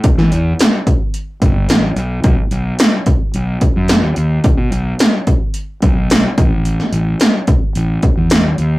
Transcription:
<<
  \new Staff \with { instrumentName = "Fingered electric bass" } { \clef bass \time 4/4 \tempo 4 = 109 r16 e16 e,8 r4. g,,8 a,,8 b,,8 | b,,16 r16 b,,8 r4 b,,8 r16 fis,8 dis,16 dis,8 | r16 b,16 b,,8 r4. b,,4 a,,8~ | a,,8 a,,8 r4 a,,8 r16 e,8 dis,16 dis,8 | }
  \new DrumStaff \with { instrumentName = "Drums" } \drummode { \time 4/4 <hh bd>16 sn16 hh8 <hh sn>8 <hh bd>8 hh8 <hh bd>8 <hh sn>8 hh8 | <hh bd>8 hh8 <hh sn>8 <hh bd>8 hh8 <hh bd>8 <hh sn>8 hh8 | <hh bd>8 hh8 <hh sn>8 <hh bd>8 hh8 <hh bd>8 <hh sn>8 <hh bd>8 | hh16 sn16 hh8 <hh sn>8 <hh bd>8 hh8 <hh bd>8 <hh sn>8 hh8 | }
>>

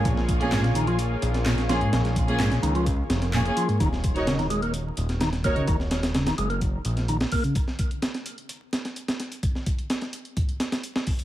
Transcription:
<<
  \new Staff \with { instrumentName = "Analog synth pad" } { \time 4/4 \key ees \minor \tempo 4 = 128 <bes f' aes' des''>1~ | <bes f' aes' des''>1 | r1 | r1 |
r1 | r1 | }
  \new Staff \with { instrumentName = "String section" } { \time 4/4 \key ees \minor r8. <bes des' f' aes'>16 r2 r8 <bes des' f' aes'>16 r16 | r8. <bes des' f' aes'>16 r2 <bes des' f' aes'>16 <bes des' f' aes'>16 r8 | r8. <ees' ges' bes' des''>16 r2 r8 <ees' ges' bes' des''>16 r16 | r1 |
r1 | r1 | }
  \new Staff \with { instrumentName = "Tonewheel organ" } { \clef bass \time 4/4 \key ees \minor bes,16 r8. aes,16 bes,16 ees16 f16 r4 bes,16 r16 f16 aes,16 | bes,16 r8. aes,16 bes,16 ees16 f16 r4 bes,16 r16 f16 aes,16 | ees16 r8. des16 ees16 aes16 bes16 r4 ees16 r16 bes16 des16 | ees16 r8. des16 ees16 aes16 bes16 r4 ees16 r16 bes16 des16 |
r1 | r1 | }
  \new Staff \with { instrumentName = "Analog synth bass" } { \clef bass \time 4/4 \key ees \minor bes,,2~ bes,,8 bes,,4. | bes,,4. des,4 f,,4 r8 | ees,,2~ ees,,8 ees,,4. | ees,,4. ges,,4 bes,,4 r8 |
r1 | r1 | }
  \new DrumStaff \with { instrumentName = "Drums" } \drummode { \time 4/4 <hh bd>16 sn16 <hh bd>16 hh16 <hc hh sn>16 <hh sn>16 hh16 hh16 hh8 hh16 <hh sn>16 <hc hh sn>16 <hh sn>16 <hh sn>16 hh16 | <hh sn>16 <hh sn>16 <hh bd>16 hh16 <hc hh sn>16 <hh sn>16 hh16 hh16 <hh bd>8 <hh sn>16 <hh sn>16 <hc hh>16 hh16 hh16 hh16 | <hh bd>16 sn16 <hh bd>16 hh16 <hh sn>16 <hh sn>16 hh16 hh16 hh8 hh16 <hh sn>16 <hh sn>16 <hh sn>16 <hh bd>16 hh16 | <hh bd>16 sn16 <hh sn>16 <hh sn>16 <hh sn>16 <hh sn>16 hh16 hh16 <hh bd>8 hh16 <hh sn>16 hh16 <hh sn>16 <hh hho bd>16 hh16 |
<hh bd>16 sn16 <hh bd>16 hh16 <hh sn>16 <hh sn>16 hh16 hh16 hh8 <hh sn>16 <hh sn>16 hh16 <hh sn>16 <hh sn>16 hh16 | <hh bd>16 sn16 <hh bd>16 hh16 <hh sn>16 <hh sn>16 hh16 hh16 <hh bd>16 hh16 <hh sn>16 <hh sn>16 hh16 <hh sn>16 <hh hho bd>16 hh16 | }
>>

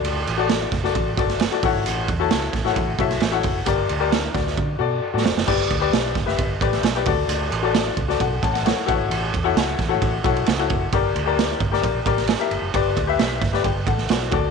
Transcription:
<<
  \new Staff \with { instrumentName = "Upright piano" } { \time 4/4 \key g \lydian \tempo 4 = 132 << { r1 | r1 | r4 <d' bes'>8 <fis' d''>4 r4. | r1 |
r2 <a' fis''>8 <cis'' a''>16 fis''16 <a' cis'' fis''>4 | r1 | r1 | r2 <b' g''>8 <a' fis''>8 <fis' d''>4 | } \\ { <fis' a' d''>8 r16 <fis' a' d''>8. r16 <fis' a' d''>8 r16 <fis' a' d''>8 r16 <fis' a' d''>16 <e' fis' a' cis'' fis''>8~ | <e' fis' a' cis'' fis''>8 r16 <e' fis' a' cis'' a''>8. r16 <e' fis' a' cis'' fis''>8 r16 <e' fis' a' cis'' e''>8 r16 <e' fis' a' cis'' fis''>8 r16 | <g' bes' d''>8 r16 <g' bes' d''>16 r4. <fis' a' d''>8 r16 <fis' a' d''>8 r16 | <g' b' d''>8 r16 <g' b' d''>8. r16 <g' b' e''>8 r16 <g' b' d''>8 r16 <g' b' d''>16 <fis' a' d''>8~ |
<fis' a' d''>8 r16 <fis' a' d''>8. r16 <fis' a' d''>8 r4 r16 <e' fis' a' b' cis'' fis''>8~ | <e' fis' a' b' cis'' fis''>8 r16 <e' fis' a' cis'' fis''>8. r16 <e' fis' a' cis'' fis''>8 r16 <e' fis' a' cis'' fis''>8 r16 <e' fis' a' cis'' fis''>8 r16 | <g' bes' d''>8 r16 <g' bes' d''>8. r16 <g' bes' d''>8 r16 <g' bes' d''>8 r16 <g' bes' e''>8 r16 | <g' b' d''>8 r16 <g' b' e''>8. r16 <g' b' d''>16 r4. <fis' a' d''>8 | } >> }
  \new Staff \with { instrumentName = "Fingered electric bass" } { \clef bass \time 4/4 \key g \lydian d,8 a,,4 fis,,8 a,,8 g,,8. r16 a,,16 gis,,16 | a,,8 e,8 cis,8 a,,8 a,,8 b,,8 a,,8 fis,,8 | g,,8 d,4 d,8 d8 b,8 r16 a,16 f,,16 fis,,16 | g,,8 d,8 b,,8 g,,8 g,,8 a,,8 b,,8 d,8 |
d,8 a,,4 cis,8 b,,8 a,,8. r16 a,,16 gis,,16 | a,,8 e,8 cis,8 a,,8 a,,8 b,,8 cis,8 fis,,8 | g,,8 d,4 g,,8 bes,,8 a,,8. r16 g,,16 fis,,16 | g,,8 d,8 b,,8 g,,8 g,,8 a,,8 b,,8 d,8 | }
  \new DrumStaff \with { instrumentName = "Drums" } \drummode { \time 4/4 cymr8 cymr8 <cymr sn>8 <bd cymr sn>16 sn16 <bd cymr>8 <bd cymr>16 <cymr sn>16 <cymr sn>16 cymr16 <hho bd cymr>8 | <hhp cymr>8 <bd cymr>8 <cymr sn>8 <bd cymr sn>16 sn16 <bd cymr>8 <bd cymr>16 <cymr sn>16 <cymr sn>16 cymr16 <hho bd cymr>8 | <hhp bd cymr>8 cymr8 <cymr sn>8 <bd cymr sn>16 sn16 bd4 r8 sn16 sn16 | <cymc bd>8 <bd cymr>8 <cymr sn>8 <bd cymr sn>16 sn16 <bd cymr>8 <bd cymr>16 <cymr sn>16 <cymr sn>16 cymr16 <hho bd cymr>8 |
<hhp cymr>8 cymr8 <cymr sn>8 <bd cymr>16 sn16 <bd cymr>8 <bd cymr>16 <cymr sn>16 <cymr sn>16 cymr16 <bd cymr>8 | cymr8 <bd cymr>8 <cymr sn>8 <bd cymr sn>8 <bd cymr>8 <bd cymr>16 cymr16 <cymr sn>16 cymr16 <bd cymr>8 | <bd cymr>8 cymr8 <cymr sn>8 <bd cymr>16 sn16 <bd cymr>8 <bd cymr>16 <cymr sn>16 <cymr sn>16 cymr16 cymr8 | <bd cymr>8 <bd cymr>8 <cymr sn>8 <bd cymr sn>16 sn16 <bd cymr>8 <bd cymr>16 sn16 <cymr sn>16 cymr16 <bd cymr>8 | }
>>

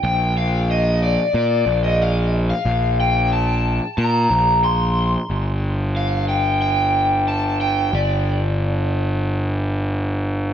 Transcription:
<<
  \new Staff \with { instrumentName = "Overdriven electric guitar" } { \time 4/4 \key g \minor \tempo 4 = 91 g''8 f''8 ees''8 d''8 d''8. ees''16 f''8. f''16~ | f''8 g''8 a''4 bes''4 c'''8. r16 | r4 f''8 g''8 g''4 a''8 g''8 | d''2. r4 | }
  \new Staff \with { instrumentName = "Picked electric bass" } { \clef bass \time 4/4 \key g \minor bes,,2 bes,8 bes,,4. | bes,,2 bes,8 bes,,4. | g,,1 | g,,1 | }
>>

